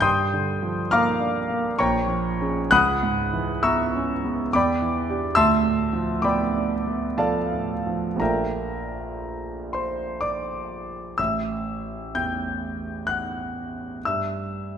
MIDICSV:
0, 0, Header, 1, 2, 480
1, 0, Start_track
1, 0, Tempo, 870827
1, 21, Time_signature, 3, 2, 24, 8
1, 980, Tempo, 931677
1, 1940, Tempo, 869565
1, 3380, Tempo, 940439
1, 3860, Tempo, 1008403
1, 5300, Tempo, 950872
1, 7603, End_track
2, 0, Start_track
2, 0, Title_t, "Grand piano"
2, 0, Program_c, 0, 0
2, 0, Control_c, 0, 64, 127
2, 3, Note_on_c, 0, 91, 101
2, 9, Note_on_c, 0, 43, 63
2, 10, Note_on_c, 0, 79, 83
2, 11, Note_on_c, 0, 87, 78
2, 12, Note_on_c, 0, 84, 82
2, 32, Control_c, 0, 64, 0
2, 127, Control_c, 0, 64, 127
2, 184, Note_on_c, 0, 50, 47
2, 345, Note_on_c, 0, 53, 42
2, 438, Note_off_c, 0, 50, 0
2, 476, Note_off_c, 0, 79, 0
2, 476, Note_off_c, 0, 87, 0
2, 477, Note_off_c, 0, 84, 0
2, 494, Note_off_c, 0, 91, 0
2, 502, Note_on_c, 0, 89, 104
2, 507, Note_on_c, 0, 82, 84
2, 509, Note_on_c, 0, 86, 80
2, 511, Note_on_c, 0, 58, 51
2, 511, Note_on_c, 0, 77, 80
2, 597, Note_off_c, 0, 53, 0
2, 662, Note_on_c, 0, 62, 52
2, 760, Note_off_c, 0, 58, 0
2, 826, Note_on_c, 0, 58, 47
2, 916, Note_off_c, 0, 62, 0
2, 951, Note_off_c, 0, 43, 0
2, 959, Note_off_c, 0, 82, 0
2, 961, Note_off_c, 0, 77, 0
2, 961, Note_off_c, 0, 86, 0
2, 979, Note_off_c, 0, 89, 0
2, 983, Note_off_c, 0, 58, 0
2, 984, Note_on_c, 0, 85, 93
2, 986, Control_c, 0, 64, 0
2, 986, Note_on_c, 0, 82, 81
2, 991, Note_on_c, 0, 73, 73
2, 991, Note_on_c, 0, 79, 78
2, 992, Note_on_c, 0, 34, 61
2, 1068, Control_c, 0, 64, 127
2, 1133, Note_on_c, 0, 53, 47
2, 1304, Note_on_c, 0, 61, 47
2, 1304, Note_on_c, 0, 68, 50
2, 1403, Note_off_c, 0, 53, 0
2, 1454, Note_off_c, 0, 61, 0
2, 1454, Note_off_c, 0, 68, 0
2, 1454, Note_off_c, 0, 82, 0
2, 1456, Note_off_c, 0, 73, 0
2, 1456, Note_off_c, 0, 79, 0
2, 1459, Note_on_c, 0, 90, 118
2, 1462, Note_off_c, 0, 34, 0
2, 1465, Note_on_c, 0, 37, 61
2, 1465, Note_on_c, 0, 78, 94
2, 1466, Note_on_c, 0, 83, 94
2, 1466, Note_on_c, 0, 87, 87
2, 1473, Note_off_c, 0, 85, 0
2, 1480, Control_c, 0, 64, 0
2, 1573, Control_c, 0, 64, 127
2, 1625, Note_on_c, 0, 44, 45
2, 1779, Note_on_c, 0, 52, 48
2, 1875, Note_off_c, 0, 44, 0
2, 1916, Note_off_c, 0, 78, 0
2, 1917, Note_off_c, 0, 83, 0
2, 1917, Note_off_c, 0, 87, 0
2, 1932, Note_on_c, 0, 76, 69
2, 1933, Note_off_c, 0, 90, 0
2, 1933, Note_on_c, 0, 85, 71
2, 1933, Note_on_c, 0, 88, 91
2, 1935, Note_on_c, 0, 59, 49
2, 1938, Note_on_c, 0, 82, 66
2, 2035, Note_off_c, 0, 52, 0
2, 2111, Note_on_c, 0, 61, 51
2, 2200, Note_off_c, 0, 59, 0
2, 2271, Note_on_c, 0, 59, 50
2, 2367, Note_off_c, 0, 61, 0
2, 2401, Note_off_c, 0, 76, 0
2, 2401, Note_off_c, 0, 85, 0
2, 2402, Note_off_c, 0, 37, 0
2, 2404, Note_off_c, 0, 82, 0
2, 2424, Note_off_c, 0, 88, 0
2, 2429, Note_off_c, 0, 59, 0
2, 2432, Note_on_c, 0, 86, 98
2, 2437, Control_c, 0, 64, 0
2, 2439, Note_on_c, 0, 40, 59
2, 2441, Note_on_c, 0, 83, 76
2, 2445, Note_on_c, 0, 79, 70
2, 2447, Note_on_c, 0, 74, 74
2, 2523, Control_c, 0, 64, 127
2, 2590, Note_on_c, 0, 52, 43
2, 2743, Note_on_c, 0, 62, 44
2, 2748, Note_on_c, 0, 67, 50
2, 2833, Note_off_c, 0, 52, 0
2, 2876, Note_off_c, 0, 83, 0
2, 2878, Note_off_c, 0, 79, 0
2, 2879, Note_off_c, 0, 62, 0
2, 2879, Note_off_c, 0, 74, 0
2, 2882, Note_off_c, 0, 67, 0
2, 2883, Note_on_c, 0, 88, 109
2, 2884, Note_off_c, 0, 40, 0
2, 2889, Note_on_c, 0, 76, 81
2, 2890, Note_on_c, 0, 81, 81
2, 2891, Note_on_c, 0, 84, 82
2, 2893, Note_on_c, 0, 38, 63
2, 2894, Note_off_c, 0, 86, 0
2, 2899, Control_c, 0, 64, 0
2, 2975, Control_c, 0, 64, 127
2, 3043, Note_on_c, 0, 45, 41
2, 3204, Note_on_c, 0, 53, 43
2, 3309, Note_off_c, 0, 45, 0
2, 3356, Note_off_c, 0, 76, 0
2, 3357, Note_off_c, 0, 81, 0
2, 3357, Note_off_c, 0, 84, 0
2, 3364, Note_on_c, 0, 86, 80
2, 3372, Note_on_c, 0, 59, 49
2, 3375, Note_off_c, 0, 88, 0
2, 3376, Note_on_c, 0, 79, 64
2, 3376, Note_on_c, 0, 83, 62
2, 3379, Note_on_c, 0, 74, 64
2, 3469, Note_off_c, 0, 53, 0
2, 3534, Note_on_c, 0, 62, 42
2, 3629, Note_off_c, 0, 59, 0
2, 3694, Note_on_c, 0, 59, 41
2, 3792, Note_off_c, 0, 62, 0
2, 3837, Note_off_c, 0, 79, 0
2, 3837, Note_off_c, 0, 83, 0
2, 3838, Note_off_c, 0, 74, 0
2, 3852, Note_off_c, 0, 86, 0
2, 3852, Note_on_c, 0, 53, 41
2, 3853, Note_on_c, 0, 81, 74
2, 3855, Note_on_c, 0, 77, 61
2, 3857, Note_on_c, 0, 69, 59
2, 3858, Note_on_c, 0, 74, 61
2, 3951, Note_off_c, 0, 59, 0
2, 4021, Note_on_c, 0, 45, 36
2, 4107, Note_off_c, 0, 53, 0
2, 4182, Note_on_c, 0, 53, 39
2, 4277, Note_off_c, 0, 45, 0
2, 4319, Note_off_c, 0, 77, 0
2, 4320, Note_off_c, 0, 69, 0
2, 4321, Note_off_c, 0, 53, 0
2, 4321, Note_off_c, 0, 74, 0
2, 4321, Note_on_c, 0, 34, 49
2, 4322, Note_off_c, 0, 38, 0
2, 4328, Note_on_c, 0, 53, 37
2, 4332, Note_on_c, 0, 57, 33
2, 4337, Note_off_c, 0, 81, 0
2, 4337, Note_on_c, 0, 62, 36
2, 4339, Note_on_c, 0, 82, 76
2, 4342, Note_on_c, 0, 65, 38
2, 4346, Note_on_c, 0, 70, 57
2, 4347, Note_on_c, 0, 76, 58
2, 4348, Control_c, 0, 64, 0
2, 4348, Note_on_c, 0, 79, 56
2, 4447, Control_c, 0, 64, 127
2, 5069, Note_on_c, 0, 84, 64
2, 5076, Note_on_c, 0, 72, 51
2, 5283, Note_off_c, 0, 70, 0
2, 5284, Note_off_c, 0, 76, 0
2, 5284, Note_off_c, 0, 79, 0
2, 5288, Note_off_c, 0, 72, 0
2, 5295, Note_on_c, 0, 86, 71
2, 5299, Note_off_c, 0, 82, 0
2, 5299, Note_on_c, 0, 74, 52
2, 5300, Note_off_c, 0, 84, 0
2, 5758, Note_off_c, 0, 34, 0
2, 5762, Note_off_c, 0, 53, 0
2, 5764, Note_off_c, 0, 57, 0
2, 5767, Note_off_c, 0, 62, 0
2, 5768, Note_off_c, 0, 74, 0
2, 5769, Note_off_c, 0, 65, 0
2, 5785, Note_on_c, 0, 88, 78
2, 5786, Note_off_c, 0, 86, 0
2, 5790, Note_on_c, 0, 33, 46
2, 5794, Note_on_c, 0, 76, 57
2, 5798, Control_c, 0, 64, 0
2, 5882, Control_c, 0, 64, 127
2, 6251, Note_off_c, 0, 76, 0
2, 6266, Note_off_c, 0, 88, 0
2, 6276, Note_on_c, 0, 40, 32
2, 6276, Note_on_c, 0, 91, 78
2, 6278, Note_on_c, 0, 79, 58
2, 6726, Note_off_c, 0, 79, 0
2, 6740, Note_on_c, 0, 90, 75
2, 6746, Note_off_c, 0, 91, 0
2, 6751, Note_on_c, 0, 78, 56
2, 7203, Note_off_c, 0, 33, 0
2, 7206, Note_off_c, 0, 78, 0
2, 7221, Note_off_c, 0, 90, 0
2, 7226, Note_off_c, 0, 40, 0
2, 7231, Control_c, 0, 64, 0
2, 7238, Note_on_c, 0, 88, 73
2, 7241, Note_on_c, 0, 76, 55
2, 7242, Note_on_c, 0, 43, 42
2, 7310, Control_c, 0, 64, 127
2, 7603, Note_off_c, 0, 43, 0
2, 7603, Note_off_c, 0, 76, 0
2, 7603, Note_off_c, 0, 88, 0
2, 7603, End_track
0, 0, End_of_file